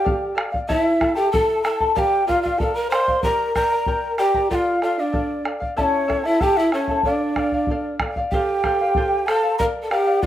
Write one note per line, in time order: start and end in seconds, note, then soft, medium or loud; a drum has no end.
0.00 0.38 G4 medium
0.00 0.36 G5 loud
0.04 0.34 A4 medium
0.04 0.34 D5 medium
0.04 0.35 F5 medium
0.04 bombo low medium
0.35 0.52 A4 medium
0.35 0.52 D5 medium
0.35 0.51 F5 medium
0.35 bombo rim medium
0.52 0.68 D5 soft
0.52 0.68 F5 soft
0.52 bombo low medium
0.68 0.99 E4 medium
0.68 1.13 E4 medium
0.68 1.00 A4 medium
0.68 1.00 C#5 medium
0.68 1.13 E5 medium
0.68 0.99 E5 medium
0.68 1.01 A5 medium
0.68 bombo low medium
1.00 1.16 E4 medium
1.00 1.15 A4 medium
1.00 1.16 E5 medium
1.00 1.14 A5 medium
1.00 bombo rim medium
1.00 bombo low medium
1.15 1.32 E4 soft
1.15 1.31 G4 medium
1.15 1.32 A4 soft
1.15 1.31 G5 medium
1.15 1.32 A5 soft
1.32 1.64 E4 medium
1.32 1.62 A4 medium
1.32 1.64 A4 medium
1.32 1.63 E5 medium
1.32 1.62 A5 medium
1.32 1.65 A5 medium
1.32 bombo low medium
1.63 1.81 E4 medium
1.63 1.94 A4 medium
1.63 1.80 A4 medium
1.63 1.80 E5 medium
1.63 1.79 A5 medium
1.63 1.68 A#5 medium
1.63 bombo rim medium
1.67 1.93 A5 medium
1.80 1.94 E4 soft
1.80 1.95 A4 soft
1.80 1.96 A5 soft
1.80 bombo low soft
1.95 2.26 G4 medium
1.95 2.26 A#4 medium
1.95 2.26 D5 medium
1.95 2.27 F5 medium
1.95 2.00 A5 medium
1.95 bombo low medium
1.99 2.25 G5 medium
2.27 2.42 F4 medium
2.27 2.44 A#4 medium
2.27 2.44 D5 medium
2.27 2.42 F5 medium
2.27 2.43 F5 medium
2.27 bombo low medium
2.42 2.61 F4 medium
2.42 2.60 D5 soft
2.42 2.60 F5 medium
2.42 2.60 F5 soft
2.42 bombo low soft
2.59 2.76 A4 medium
2.59 2.91 A#4 soft
2.59 2.92 D5 soft
2.59 2.92 F5 medium
2.59 2.76 A5 medium
2.59 bombo low medium
2.75 2.89 A#4 medium
2.75 2.90 A#5 medium
2.90 3.08 A#4 medium
2.90 3.20 C5 medium
2.90 3.08 D5 medium
2.90 3.07 F5 medium
2.90 3.21 C6 loud
2.90 bombo rim medium
3.08 3.24 D5 soft
3.08 3.24 F5 soft
3.08 bombo low medium
3.22 3.56 G4 medium
3.22 3.53 A#4 medium
3.22 3.55 A#4 medium
3.22 3.56 D5 medium
3.22 3.54 G5 medium
3.22 3.53 A#5 loud
3.22 3.56 A#5 medium
3.22 bombo low medium
3.54 4.14 A#4 medium
3.54 3.71 A#4 medium
3.54 3.71 D5 medium
3.54 3.71 G5 medium
3.54 4.15 A#5 loud
3.54 3.71 A#5 medium
3.54 bombo rim soft
3.54 bombo low medium
3.72 3.87 A#4 soft
3.72 3.87 D5 soft
3.72 3.87 A#5 medium
3.86 4.18 A#4 medium
3.86 4.18 D5 medium
3.86 4.18 G5 medium
3.86 4.19 A#5 medium
3.86 bombo low medium
4.18 4.48 G4 medium
4.18 4.35 A#4 medium
4.18 4.35 D5 medium
4.18 4.48 G5 medium
4.18 4.35 G5 medium
4.18 4.34 A#5 medium
4.18 bombo rim medium
4.34 4.50 A#4 soft
4.34 4.49 D5 medium
4.34 4.51 A#5 medium
4.34 bombo low soft
4.50 4.80 F4 medium
4.50 4.81 A4 medium
4.50 4.82 D5 medium
4.50 4.82 F5 medium
4.50 4.56 G5 medium
4.50 bombo low medium
4.55 4.80 F5 medium
4.82 5.00 F4 medium
4.82 4.98 A4 medium
4.82 4.98 D5 medium
4.82 4.96 F5 medium
4.82 5.01 F5 medium
4.82 bombo rim soft
4.98 5.46 D4 medium
4.98 5.12 D5 soft
4.98 5.47 D5 medium
4.98 5.13 F5 soft
5.12 5.43 A4 medium
5.12 5.44 D5 medium
5.12 5.45 F5 medium
5.12 bombo low medium
5.44 5.61 A4 medium
5.44 5.61 D5 medium
5.44 5.59 F5 medium
5.44 bombo rim medium
5.60 5.76 D5 soft
5.60 5.76 F5 medium
5.60 bombo low soft
5.77 6.27 C#4 medium
5.77 6.07 E4 medium
5.77 6.07 A4 medium
5.77 6.09 C#5 medium
5.77 5.84 D5 medium
5.77 6.07 E5 medium
5.77 6.08 A5 medium
5.77 bombo low medium
5.83 6.27 C#5 medium
6.08 6.24 E4 medium
6.08 6.23 A4 medium
6.08 6.25 E5 medium
6.08 6.22 A5 medium
6.08 bombo rim soft
6.08 bombo low medium
6.24 6.39 E4 soft
6.24 6.43 E4 medium
6.24 6.40 A4 soft
6.24 6.43 E5 medium
6.24 6.40 A5 soft
6.40 6.71 E4 medium
6.40 6.60 G4 medium
6.40 6.72 A4 medium
6.40 6.72 E5 medium
6.40 6.59 G5 loud
6.40 6.73 A5 medium
6.40 bombo low medium
6.57 6.73 E4 medium
6.57 6.73 E5 medium
6.72 7.03 C#4 medium
6.72 6.89 E4 medium
6.72 6.89 A4 soft
6.72 7.03 C#5 medium
6.72 6.89 E5 soft
6.72 6.88 A5 medium
6.72 bombo rim soft
6.88 7.05 E4 soft
6.88 7.04 A4 soft
6.88 7.05 A5 soft
6.88 bombo low soft
7.03 7.97 D4 medium
7.03 7.35 A4 medium
7.03 7.96 D5 medium
7.03 7.36 D5 medium
7.03 7.37 F5 medium
7.03 bombo low medium
7.36 7.52 A4 soft
7.36 7.53 D5 medium
7.36 7.52 F5 medium
7.36 bombo rim soft
7.36 bombo low soft
7.52 7.69 D5 soft
7.52 7.69 F5 soft
7.52 bombo low soft
7.67 8.00 A4 medium
7.67 8.00 D5 soft
7.67 bombo low medium
7.71 8.01 F5 medium
8.00 8.16 A4 medium
8.00 8.17 D5 medium
8.00 8.15 F5 medium
8.00 bombo rim medium
8.00 bombo low medium
8.16 8.33 D5 medium
8.16 8.32 F5 medium
8.16 bombo low medium
8.31 9.29 G4 medium
8.31 8.63 A4 medium
8.31 8.64 C5 medium
8.31 8.64 F5 medium
8.31 9.28 G5 loud
8.31 bombo low medium
8.64 8.80 A4 medium
8.64 8.80 C5 medium
8.64 8.80 F5 medium
8.64 bombo rim medium
8.64 bombo low medium
8.81 8.96 C5 soft
8.81 8.96 F5 soft
8.95 9.27 A4 medium
8.95 9.27 C5 medium
8.95 9.28 F5 medium
8.95 bombo low medium
9.26 9.58 A4 medium
9.26 9.43 A4 medium
9.26 9.43 C5 medium
9.26 9.42 F5 medium
9.26 9.58 A5 loud
9.26 bombo rim medium
9.43 9.59 C5 soft
9.43 9.59 F5 medium
9.58 9.65 A#4 medium
9.58 9.89 A#4 medium
9.58 9.90 D5 medium
9.58 9.90 F5 medium
9.58 9.64 A#5 medium
9.58 bombo low medium
9.82 9.93 A4 soft
9.82 9.93 A5 medium
9.91 10.24 G4 medium
9.91 10.06 A#4 medium
9.91 10.06 D5 medium
9.91 10.05 F5 medium
9.91 10.25 G5 loud
9.91 bombo rim medium
10.06 10.22 D5 soft
10.06 10.22 F5 soft
10.22 10.26 F4 medium
10.22 10.26 A#4 medium
10.22 bombo low medium